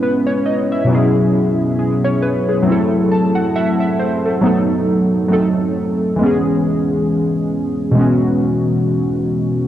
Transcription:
Already playing: G#3 B3 C#4 E4 B4
0.03 B4
0.27 C#5
0.46 D#5
0.72 E5
0.85 B2 F#3
0.89 B3 C#4 E4
0.95 G#4
1.79 G#4
2.04 C#5
2.22 B4
2.49 G#4
2.63 F#3 A3
2.67 C4 E4
2.72 A4
3.12 A5
3.35 F#5
3.56 E5 F#5
3.80 E5
3.99 C5
4.26 A4
4.41 F#3 A3 B3 D#4
4.46 A4
5.28 F#3 A3 C4 D#4
5.33 A4
6.16 E3 G#3
6.21 B3 C#4
6.26 G#4
7.91 B2 E3 G#3
7.97 B3 C#4 F#4

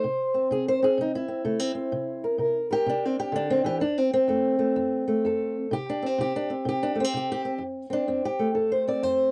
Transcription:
Already playing: C5
0.04 C3
0.34 C4
0.51 C3 G#4
0.68 C5
0.82 C4 G#4
0.98 C3 D#4
1.15 E4
1.28 C4
1.45 C3 A3
1.59 C4
1.75 C4
1.92 C3
2.24 A#4
2.38 C3 A#4
2.71 G4 A#4
2.86 C3 D4
3.05 C4
3.20 G4
3.32 D3 D4
3.50 C4
3.64 E3 G4
3.80 F2 D4
3.98 C4
4.14 C4
4.28 F2 A3
4.59 A3
4.76 F2
5.07 A3
5.24 F2 A4
5.71 C3 G4
5.89 D4
6.02 C4
6.18 C3 G4
6.36 D4
6.50 C4
6.65 C3 G4
6.83 D4
6.95 A3
7.00 C4
7.04 C4
7.14 C3 G4
7.32 G4
7.45 C4
7.58 F2
7.90 C4 D4
8.08 F2 C4
8.25 G4
8.39 A3
8.55 F2 A4
8.72 C5
8.88 C4 D5
9.03 F2 C5

